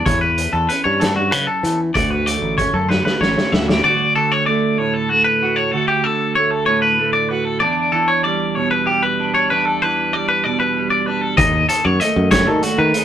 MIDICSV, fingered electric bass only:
0, 0, Header, 1, 2, 480
1, 0, Start_track
1, 0, Key_signature, 2, "major"
1, 0, Tempo, 628272
1, 49, Time_signature, 6, 3, 24, 8
1, 9968, End_track
2, 0, Start_track
2, 0, Title_t, "Fingered electric bass"
2, 0, Program_c, 0, 33
2, 46, Note_on_c, 0, 40, 89
2, 350, Note_off_c, 0, 40, 0
2, 405, Note_on_c, 0, 40, 88
2, 508, Note_off_c, 0, 40, 0
2, 653, Note_on_c, 0, 43, 85
2, 1009, Note_off_c, 0, 43, 0
2, 1009, Note_on_c, 0, 49, 79
2, 1111, Note_off_c, 0, 49, 0
2, 1248, Note_on_c, 0, 52, 78
2, 1452, Note_off_c, 0, 52, 0
2, 1494, Note_on_c, 0, 38, 83
2, 1797, Note_off_c, 0, 38, 0
2, 1849, Note_on_c, 0, 33, 87
2, 1952, Note_off_c, 0, 33, 0
2, 2089, Note_on_c, 0, 42, 79
2, 2293, Note_off_c, 0, 42, 0
2, 2450, Note_on_c, 0, 33, 81
2, 2553, Note_off_c, 0, 33, 0
2, 2693, Note_on_c, 0, 38, 74
2, 2896, Note_off_c, 0, 38, 0
2, 8693, Note_on_c, 0, 39, 93
2, 8893, Note_off_c, 0, 39, 0
2, 9053, Note_on_c, 0, 42, 85
2, 9153, Note_off_c, 0, 42, 0
2, 9293, Note_on_c, 0, 42, 89
2, 9493, Note_off_c, 0, 42, 0
2, 9533, Note_on_c, 0, 51, 86
2, 9632, Note_off_c, 0, 51, 0
2, 9766, Note_on_c, 0, 51, 82
2, 9868, Note_off_c, 0, 51, 0
2, 9968, End_track
0, 0, End_of_file